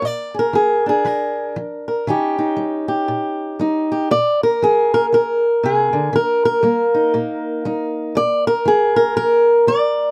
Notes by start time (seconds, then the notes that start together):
0.02 A#2 D5
0.34 G#4
0.39 A#4
0.53 F3 G#4
0.86 D4 G#4
1.05 F3 A#4
1.56 F3
1.88 A#4
2.07 D#3 C#4 D#4 G4
2.39 D#4
2.57 G3
2.88 G4
3.08 A#2
3.59 G3 D#4
3.92 G4
4.11 A#2 D5
4.43 A#4
4.62 F3 G#4
4.94 A#4
5.12 F3 A#4
5.63 C3 G#4
5.93 D3
6.13 D#3 A#4
6.45 A#4
6.63 G3 A#3
6.94 D#4
7.14 A#2 A#3
7.65 G3 D#4
8.15 A#2 D5
8.47 A#4
8.65 F3 G#4
8.96 A#4
9.17 F3 A#4
9.67 F3 D5